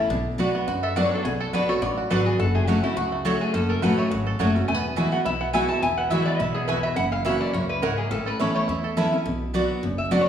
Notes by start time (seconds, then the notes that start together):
0.10 B1 B2 D4
0.38 F#3 B3 D4 F#4 D5 F#5
0.55 B3
0.68 F#2 F#4
0.83 A4 E5
0.96 F#3 B3 D4 F#4 D5 F#5
1.05 C#5
1.11 D4 A4
1.25 B1 B2 F#4 G#4
1.40 A4
1.53 B1 F#3 B3 D4 F#4 B4 D5 F#5
1.69 D4 F#4 A4 C#5
1.82 A1 F#2 B3 D5
1.97 F#4
2.10 G#1 F#3 B3 D4 F#4 A4 B4 D5 F#5
2.25 B3 D4 F#4 G#4
2.39 F#1 F#2 F#4 A4
2.55 A3 G#4
2.67 F#3 A3 C#4 F#4 C#5 F#5
2.83 A3 C#4 E4 F#4
2.96 C#2 C#3 F#4
3.12 A3
3.25 F#3 A3 C#4 F#4 A4 C#5 F#5
3.41 F#4 G#4
3.54 F#1 F#2 C#4 A4
3.69 A4 A#4
3.82 A1 F#3 A3 C#4 F#4 B4 C#5 F#5
3.98 A3 C#5
4.11 G#1 C#3 F#4
4.27 A4
4.39 F#1 F#3 A3 C#4 F#4 C#5 F#5
4.55 C#4 F#4
4.68 E1 E2 A3 G#5
4.74 B3
4.96 E3 G#3 B3 E4 F#4 E5 G#5
5.12 B3 F#4 F#5
5.25 B1 B2 E4 E5
5.41 B3 F#5
5.53 E3 G#3 B3 E4 F#4 E5 G#5
5.69 E4 A5
5.82 E1 E2 E4 G#5
5.97 B3 F#5
6.10 E3 G#3 B3 E4 F#4 E5 G#5
6.25 B3 D5
6.39 B1 B2 E4 E5
6.54 B3 G#4
6.68 E2 B3 E4 F#4 B4 E5 G#5
6.83 E4 E5
6.96 F#1 F#2 E4 F#5
7.12 E4 F5
7.25 E3 A#3 C#4 E4 F#4 C#5 E5 F#5
7.41 E4 D5
7.53 C#2 F#2 A#3 C#5
7.69 E4 B4
7.82 G#2 A#3 E4 A#4 C#5 F#5
7.97 A#3 G#4
8.11 A1 A2 C#4 A4
8.26 A4 B4
8.39 E3 B3 C#4 E4 A4 C#5 E5 B5
8.55 A3 C#5
8.68 E2 E4
8.84 A4
8.97 E3 B3 C#4 E4 A4 E5 B5
9.12 C#4 E4
9.26 B1 B2
9.54 F#3 B3 D4 F#4 D5 F#5
9.83 F#1 F#2
9.98 E5
10.11 F#3 B3 D4 F#4 D5 F#5
10.21 C#5